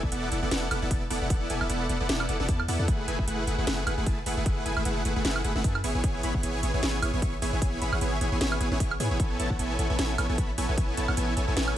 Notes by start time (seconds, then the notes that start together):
0.03 E1 B3 D5, kick
0.12 E1 B3 E4 A4 D5 F#5, closed hi-hat
0.32 E1 B3 E4 A4 D5 F#5, closed hi-hat
0.42 E1 B3 E4 A4 D5 F#5
0.51 E1 B3 E4 A4 D5 F#5, snare, closed hi-hat
0.71 E1 B3 E4 A4 D5 F#5, closed hi-hat, high woodblock
0.82 E1 B3 E4 A4 D5 F#5
0.91 E1 B3 E4 D5 A5, kick, closed hi-hat
1.10 E1 B3 E4 A4 D5 F#5, open hi-hat
1.21 E1 B3 E4 A4 D5 F#5
1.30 E1 B3 E4 A4 D5 F#5, kick, closed hi-hat
1.50 E1 B3 E4 A4 D5 G#5, closed hi-hat
1.61 E1 B3 E4 A4 D5 E5, high woodblock
1.69 E1 B3 E4 A4 D5 F#5, closed hi-hat
1.89 E1 B3 E4 A4 D5 F#5, closed hi-hat
2.00 E1 B3 E4 A4 D5 F#5
2.09 E1 B3 E4 A4 D5 F#5, snare, closed hi-hat
2.20 high woodblock
2.29 E1 B3 E4 A4 D5 F#5, closed hi-hat
2.40 E1 B3 E4 A4 D5 F#5, snare
2.49 E2 B3 E4 A4 D5 A5, kick, closed hi-hat
2.60 high woodblock
2.68 E2 B3 E4 A4 D5 F#5, open hi-hat
2.79 E2 B3 E4 A4 D5 F#5
2.88 F#1 A3 E4 G#4 B4 F#5, kick, closed hi-hat
3.08 F#1 A3 E4 G#4 B4 G#5, closed hi-hat
3.19 F#1 A3 E4 G#4 B4 E5, kick
3.27 F#1 A3 E4 G#4 B4 F#5, closed hi-hat
3.47 F#1 A3 E4 G#4 B4 F#5, closed hi-hat
3.58 F#1 A3 E4 G#4 B4 F#5
3.67 F#1 A3 E4 G#4 B4 F#5, snare, closed hi-hat
3.87 F#1 A3 E4 G#4 B4 F#5, closed hi-hat, high woodblock
3.98 F#1 A3 E4 G#4 B4 F#5
4.06 F#1 E4 B4, kick, closed hi-hat
4.26 F#1 A3 E4 G#4 B4 F#5, open hi-hat
4.37 F#1 A3 E4 G#4 B4 F#5
4.46 F#1 A3 E4 G#4 B4 F#5, kick, closed hi-hat
4.66 F#1 A3 E4 G#4 B4 G#5, closed hi-hat
4.77 F#1 A3 E4 G#4 B4 E5, high woodblock
4.85 F#1 A3 E4 G#4 B4 F#5, closed hi-hat
5.05 F#1 A3 E4 G#4 B4 F#5, closed hi-hat
5.16 F#1 A3 E4 G#4 B4 F#5
5.25 F#1 A3 E4 G#4 B4 F#5, snare, closed hi-hat
5.36 high woodblock
5.44 F#1 A3 E4 G#4 B4 F#5, closed hi-hat
5.55 F#1 A3 E4 G#4 B4 F#5, snare
5.64 F#2 A3 E4 G#4 B4 A5, kick, closed hi-hat
5.75 high woodblock
5.84 G#1 B3 E4 G#4 C#5 G#5, open hi-hat
5.95 G#1 B3 E4 G#4 C#5 G#5
6.04 G#1 B3 E4 G#4 C#5 G#5, kick, closed hi-hat
6.23 G#1 B3 E4 G#4 C#5 B5, closed hi-hat
6.34 G#1 B3 E4 G#4 F#5, kick
6.43 G#1 B3 E4 G#4 C#5 G#5, closed hi-hat
6.63 G#1 B3 E4 G#4 C#5 G#5, closed hi-hat
6.74 G#1 B3 E4 G#4 C#5 G#5
6.83 G#1 B3 E4 G#4 C#5 G#5, snare, closed hi-hat
7.02 G#1 B3 E4 G#4 C#5 G#5, closed hi-hat, high woodblock
7.13 G#1 B3 E4 G#4 C#5 G#5
7.22 G#1 B3 E4 G#4 C#5 C#6, kick, closed hi-hat
7.42 G#1 B3 E4 G#4 C#5 G#5, open hi-hat
7.53 G#1 B3 E4 G#4 C#5 G#5
7.62 G#1 B3 E4 G#4 C#5, kick, closed hi-hat
7.81 G#1 B3 E4 G#4 C#5 B5, closed hi-hat
7.92 G#1 B3 E4 G#4 C#5 F#5, high woodblock
8.01 G#1 B3 E4 G#4 C#5 G#5, closed hi-hat
8.21 G#1 B3 E4 G#4 C#5 G#5, closed hi-hat
8.32 G#1 B3 E4 G#4 C#5 G#5
8.41 G#1 B3 E4 G#4 C#5 G#5, snare, closed hi-hat
8.52 high woodblock
8.60 G#1 B3 E4 G#4 C#5 G#5, closed hi-hat
8.71 G#1 B3 E4 G#4 C#5 G#5, snare
8.80 G#1 B3 E4 C#5 C#6, kick, closed hi-hat
8.91 high woodblock
9.00 G#2 B3 E4 G#4 C#5 G#5, open hi-hat
9.11 G#1 B3 E4 G#4 C#5 G#5
9.20 A1 B3 E4, kick, closed hi-hat
9.39 A1 B3 E4 A4 C#5 A5, closed hi-hat
9.50 A1 B3 F#5, kick
9.59 A1 B3 E4 A4 C#5 G#5, closed hi-hat
9.79 A1 B3 E4 A4 C#5 G#5, closed hi-hat
9.90 A1 B3 E4 A4 C#5 G#5
9.98 A1 B3 E4 A4 C#5 G#5, snare, closed hi-hat
10.18 A1 B3 E4 A4 C#5 G#5, closed hi-hat, high woodblock
10.29 A1 B3 E4 A4 C#5 G#5
10.38 A1 B3 E4 A4 C#5 B5, kick, closed hi-hat
10.58 A1 B3 E4 A4 C#5 G#5, open hi-hat
10.69 A1 B3 E4 A4 C#5 G#5
10.77 A1 B3 E4 A4 C#5 G#5, kick, closed hi-hat
10.97 A1 B3 E4 A4 C#5 A5, closed hi-hat
11.08 A1 B3 E4 A4 C#5 F#5, high woodblock
11.17 A1 B3 E4 A4 C#5 G#5, closed hi-hat
11.37 A1 B3 E4 A4 C#5 G#5, closed hi-hat
11.48 A1 B3 E4 A4 C#5 G#5
11.56 A1 B3 E4 A4 C#5 G#5, snare, closed hi-hat
11.68 high woodblock